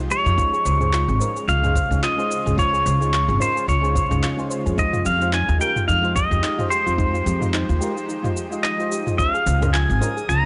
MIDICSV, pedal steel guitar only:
0, 0, Header, 1, 2, 480
1, 0, Start_track
1, 0, Tempo, 550459
1, 329, Time_signature, 4, 2, 24, 8
1, 9117, End_track
2, 0, Start_track
2, 0, Title_t, "Pedal steel guitar"
2, 0, Program_c, 0, 26
2, 99, Note_on_c, 0, 73, 92
2, 1297, Note_on_c, 0, 77, 102
2, 1330, Note_off_c, 0, 73, 0
2, 1770, Note_off_c, 0, 77, 0
2, 1773, Note_on_c, 0, 75, 99
2, 2258, Note_on_c, 0, 73, 94
2, 2266, Note_off_c, 0, 75, 0
2, 2980, Note_on_c, 0, 72, 87
2, 2995, Note_off_c, 0, 73, 0
2, 3212, Note_off_c, 0, 72, 0
2, 3215, Note_on_c, 0, 73, 85
2, 3897, Note_off_c, 0, 73, 0
2, 4178, Note_on_c, 0, 75, 92
2, 4414, Note_on_c, 0, 77, 85
2, 4420, Note_off_c, 0, 75, 0
2, 4656, Note_on_c, 0, 80, 94
2, 4659, Note_off_c, 0, 77, 0
2, 4889, Note_off_c, 0, 80, 0
2, 4893, Note_on_c, 0, 79, 85
2, 5114, Note_off_c, 0, 79, 0
2, 5126, Note_on_c, 0, 77, 93
2, 5368, Note_on_c, 0, 75, 92
2, 5375, Note_off_c, 0, 77, 0
2, 5845, Note_on_c, 0, 72, 94
2, 5863, Note_off_c, 0, 75, 0
2, 7523, Note_off_c, 0, 72, 0
2, 7526, Note_on_c, 0, 75, 86
2, 8008, Note_on_c, 0, 77, 109
2, 8022, Note_off_c, 0, 75, 0
2, 8485, Note_on_c, 0, 80, 107
2, 8503, Note_off_c, 0, 77, 0
2, 8969, Note_off_c, 0, 80, 0
2, 8972, Note_on_c, 0, 82, 109
2, 9117, Note_off_c, 0, 82, 0
2, 9117, End_track
0, 0, End_of_file